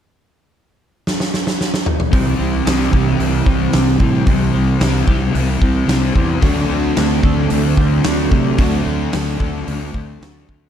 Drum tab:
HH |----------------|o---o---o---o---|o---o---o---o---|o---o---o---o---|
SD |--------oooooo--|----o-------o---|----o-------o---|----o-------o---|
T2 |--------------oo|----------------|----------------|----------------|
BD |----------------|o-----o---o---o-|o-----o---o---o-|o-----o---o---o-|

HH |o---o---o---o---|
SD |----o-------o---|
T2 |----------------|
BD |o-----o---o---o-|